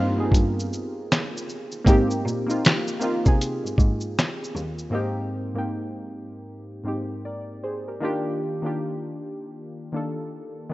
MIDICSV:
0, 0, Header, 1, 4, 480
1, 0, Start_track
1, 0, Tempo, 769231
1, 1161, Time_signature, 4, 2, 24, 8
1, 6699, End_track
2, 0, Start_track
2, 0, Title_t, "Synth keys"
2, 0, Program_c, 0, 88
2, 0, Control_c, 0, 64, 127
2, 0, Note_on_c, 0, 58, 92
2, 0, Note_on_c, 0, 60, 84
2, 0, Note_on_c, 0, 63, 81
2, 0, Note_on_c, 0, 65, 100
2, 0, Note_on_c, 0, 67, 121
2, 0, Note_on_c, 0, 70, 93
2, 82, Note_off_c, 0, 58, 0
2, 87, Note_off_c, 0, 60, 0
2, 91, Note_off_c, 0, 63, 0
2, 95, Note_off_c, 0, 65, 0
2, 100, Note_on_c, 0, 58, 72
2, 109, Note_on_c, 0, 59, 64
2, 117, Note_on_c, 0, 63, 69
2, 126, Note_on_c, 0, 68, 85
2, 141, Note_off_c, 0, 59, 0
2, 148, Note_on_c, 0, 60, 76
2, 878, Note_off_c, 0, 58, 0
2, 886, Note_off_c, 0, 63, 0
2, 891, Note_off_c, 0, 68, 0
2, 902, Note_off_c, 0, 60, 0
2, 1152, Note_on_c, 0, 58, 107
2, 1162, Note_on_c, 0, 60, 111
2, 1171, Note_on_c, 0, 63, 92
2, 1180, Note_off_c, 0, 67, 0
2, 1180, Note_on_c, 0, 67, 121
2, 1467, Note_off_c, 0, 58, 0
2, 1472, Note_off_c, 0, 60, 0
2, 1477, Note_off_c, 0, 63, 0
2, 1481, Note_off_c, 0, 67, 0
2, 1538, Note_on_c, 0, 58, 87
2, 1547, Note_on_c, 0, 60, 73
2, 1557, Note_on_c, 0, 63, 86
2, 1566, Note_on_c, 0, 65, 90
2, 1827, Note_off_c, 0, 58, 0
2, 1831, Note_off_c, 0, 60, 0
2, 1836, Note_off_c, 0, 63, 0
2, 1841, Note_off_c, 0, 65, 0
2, 1870, Note_on_c, 0, 58, 89
2, 1879, Note_on_c, 0, 60, 79
2, 1886, Note_on_c, 0, 63, 84
2, 1896, Note_on_c, 0, 65, 93
2, 2000, Note_off_c, 0, 58, 0
2, 2005, Note_off_c, 0, 60, 0
2, 2008, Note_off_c, 0, 63, 0
2, 2013, Note_off_c, 0, 65, 0
2, 2020, Note_on_c, 0, 58, 71
2, 2031, Note_on_c, 0, 60, 75
2, 2039, Note_on_c, 0, 63, 66
2, 2045, Note_on_c, 0, 68, 87
2, 2798, Note_off_c, 0, 58, 0
2, 2803, Note_off_c, 0, 60, 0
2, 2807, Note_off_c, 0, 63, 0
2, 2810, Note_off_c, 0, 68, 0
2, 3058, Note_on_c, 0, 44, 93
2, 3067, Note_on_c, 0, 58, 87
2, 3074, Note_on_c, 0, 60, 90
2, 3080, Note_on_c, 0, 63, 87
2, 3087, Note_on_c, 0, 67, 97
2, 3089, Control_c, 0, 64, 0
2, 3092, Note_off_c, 0, 70, 0
2, 3213, Control_c, 0, 64, 127
2, 3380, Note_off_c, 0, 44, 0
2, 3385, Note_off_c, 0, 58, 0
2, 3388, Note_off_c, 0, 60, 0
2, 3391, Note_off_c, 0, 63, 0
2, 3395, Note_off_c, 0, 67, 0
2, 3459, Note_on_c, 0, 44, 72
2, 3466, Note_on_c, 0, 58, 73
2, 3472, Note_on_c, 0, 60, 65
2, 3480, Note_on_c, 0, 63, 62
2, 3484, Note_on_c, 0, 67, 82
2, 4149, Note_off_c, 0, 44, 0
2, 4152, Note_off_c, 0, 58, 0
2, 4155, Note_off_c, 0, 60, 0
2, 4160, Note_off_c, 0, 63, 0
2, 4162, Note_off_c, 0, 67, 0
2, 4267, Note_on_c, 0, 44, 63
2, 4272, Note_on_c, 0, 58, 57
2, 4277, Note_on_c, 0, 60, 59
2, 4285, Note_on_c, 0, 63, 59
2, 4293, Note_on_c, 0, 67, 70
2, 4525, Note_on_c, 0, 74, 51
2, 4527, Note_off_c, 0, 67, 0
2, 4529, Note_on_c, 0, 70, 42
2, 4751, Note_off_c, 0, 74, 0
2, 4754, Note_off_c, 0, 70, 0
2, 4765, Note_on_c, 0, 72, 65
2, 4768, Note_on_c, 0, 68, 55
2, 4895, Note_off_c, 0, 44, 0
2, 4898, Note_off_c, 0, 58, 0
2, 4900, Note_off_c, 0, 60, 0
2, 4904, Note_off_c, 0, 63, 0
2, 4907, Note_off_c, 0, 72, 0
2, 4909, Note_off_c, 0, 68, 0
2, 4917, Note_on_c, 0, 70, 49
2, 4921, Note_on_c, 0, 67, 47
2, 4995, Note_on_c, 0, 51, 91
2, 5002, Note_on_c, 0, 58, 85
2, 5009, Control_c, 0, 64, 0
2, 5010, Note_on_c, 0, 62, 85
2, 5013, Note_on_c, 0, 65, 83
2, 5014, Note_off_c, 0, 67, 0
2, 5021, Note_on_c, 0, 67, 105
2, 5125, Control_c, 0, 64, 127
2, 5143, Note_off_c, 0, 70, 0
2, 5309, Note_off_c, 0, 51, 0
2, 5312, Note_off_c, 0, 58, 0
2, 5316, Note_off_c, 0, 62, 0
2, 5318, Note_off_c, 0, 65, 0
2, 5322, Note_off_c, 0, 67, 0
2, 5379, Note_on_c, 0, 51, 76
2, 5386, Note_on_c, 0, 58, 72
2, 5393, Note_on_c, 0, 62, 64
2, 5399, Note_on_c, 0, 65, 72
2, 5406, Note_on_c, 0, 67, 81
2, 6069, Note_off_c, 0, 51, 0
2, 6072, Note_off_c, 0, 58, 0
2, 6076, Note_off_c, 0, 62, 0
2, 6079, Note_off_c, 0, 65, 0
2, 6083, Note_off_c, 0, 67, 0
2, 6192, Note_on_c, 0, 51, 66
2, 6200, Note_on_c, 0, 58, 66
2, 6205, Note_on_c, 0, 62, 59
2, 6212, Note_on_c, 0, 65, 56
2, 6217, Note_on_c, 0, 69, 76
2, 6614, Note_off_c, 0, 51, 0
2, 6618, Note_off_c, 0, 58, 0
2, 6620, Note_off_c, 0, 62, 0
2, 6623, Note_off_c, 0, 65, 0
2, 6626, Note_off_c, 0, 69, 0
2, 6674, Note_on_c, 0, 51, 89
2, 6699, Note_off_c, 0, 51, 0
2, 6699, End_track
3, 0, Start_track
3, 0, Title_t, "Cello"
3, 0, Program_c, 1, 42
3, 0, Note_on_c, 1, 43, 97
3, 168, Note_off_c, 1, 43, 0
3, 199, Note_on_c, 1, 43, 99
3, 406, Note_off_c, 1, 43, 0
3, 1165, Note_on_c, 1, 44, 108
3, 1369, Note_off_c, 1, 44, 0
3, 1406, Note_on_c, 1, 46, 92
3, 1533, Note_off_c, 1, 46, 0
3, 2035, Note_on_c, 1, 48, 94
3, 2110, Note_off_c, 1, 48, 0
3, 2270, Note_on_c, 1, 44, 45
3, 2337, Note_off_c, 1, 44, 0
3, 2361, Note_on_c, 1, 44, 98
3, 2567, Note_off_c, 1, 44, 0
3, 2840, Note_on_c, 1, 39, 82
3, 3046, Note_off_c, 1, 39, 0
3, 6699, End_track
4, 0, Start_track
4, 0, Title_t, "Drums"
4, 198, Note_on_c, 9, 36, 87
4, 215, Note_on_c, 9, 42, 53
4, 215, Note_on_c, 9, 82, 58
4, 260, Note_off_c, 9, 36, 0
4, 277, Note_off_c, 9, 42, 0
4, 277, Note_off_c, 9, 82, 0
4, 371, Note_on_c, 9, 82, 46
4, 433, Note_off_c, 9, 82, 0
4, 455, Note_on_c, 9, 82, 49
4, 518, Note_off_c, 9, 82, 0
4, 698, Note_on_c, 9, 42, 62
4, 698, Note_on_c, 9, 82, 58
4, 699, Note_on_c, 9, 38, 103
4, 703, Note_on_c, 9, 39, 80
4, 761, Note_off_c, 9, 38, 0
4, 761, Note_off_c, 9, 42, 0
4, 761, Note_off_c, 9, 82, 0
4, 765, Note_off_c, 9, 39, 0
4, 856, Note_on_c, 9, 82, 49
4, 919, Note_off_c, 9, 82, 0
4, 931, Note_on_c, 9, 82, 43
4, 994, Note_off_c, 9, 82, 0
4, 1071, Note_on_c, 9, 82, 52
4, 1133, Note_off_c, 9, 82, 0
4, 1162, Note_on_c, 9, 36, 113
4, 1167, Note_on_c, 9, 42, 64
4, 1167, Note_on_c, 9, 82, 55
4, 1224, Note_off_c, 9, 36, 0
4, 1229, Note_off_c, 9, 42, 0
4, 1229, Note_off_c, 9, 82, 0
4, 1314, Note_on_c, 9, 82, 55
4, 1376, Note_off_c, 9, 82, 0
4, 1421, Note_on_c, 9, 82, 44
4, 1483, Note_off_c, 9, 82, 0
4, 1559, Note_on_c, 9, 82, 48
4, 1621, Note_off_c, 9, 82, 0
4, 1653, Note_on_c, 9, 42, 66
4, 1653, Note_on_c, 9, 82, 66
4, 1661, Note_on_c, 9, 38, 112
4, 1666, Note_on_c, 9, 39, 100
4, 1715, Note_off_c, 9, 42, 0
4, 1715, Note_off_c, 9, 82, 0
4, 1724, Note_off_c, 9, 38, 0
4, 1728, Note_off_c, 9, 39, 0
4, 1794, Note_on_c, 9, 82, 50
4, 1857, Note_off_c, 9, 82, 0
4, 1878, Note_on_c, 9, 82, 54
4, 1941, Note_off_c, 9, 82, 0
4, 2031, Note_on_c, 9, 82, 54
4, 2034, Note_on_c, 9, 36, 96
4, 2094, Note_off_c, 9, 82, 0
4, 2097, Note_off_c, 9, 36, 0
4, 2130, Note_on_c, 9, 42, 58
4, 2130, Note_on_c, 9, 82, 59
4, 2193, Note_off_c, 9, 42, 0
4, 2193, Note_off_c, 9, 82, 0
4, 2286, Note_on_c, 9, 82, 44
4, 2348, Note_off_c, 9, 82, 0
4, 2358, Note_on_c, 9, 36, 95
4, 2369, Note_on_c, 9, 82, 54
4, 2421, Note_off_c, 9, 36, 0
4, 2431, Note_off_c, 9, 82, 0
4, 2499, Note_on_c, 9, 82, 49
4, 2562, Note_off_c, 9, 82, 0
4, 2612, Note_on_c, 9, 42, 61
4, 2612, Note_on_c, 9, 82, 59
4, 2613, Note_on_c, 9, 38, 91
4, 2617, Note_on_c, 9, 39, 73
4, 2675, Note_off_c, 9, 38, 0
4, 2675, Note_off_c, 9, 42, 0
4, 2675, Note_off_c, 9, 82, 0
4, 2679, Note_off_c, 9, 39, 0
4, 2770, Note_on_c, 9, 82, 46
4, 2832, Note_off_c, 9, 82, 0
4, 2847, Note_on_c, 9, 82, 42
4, 2910, Note_off_c, 9, 82, 0
4, 2986, Note_on_c, 9, 82, 49
4, 3048, Note_off_c, 9, 82, 0
4, 6699, End_track
0, 0, End_of_file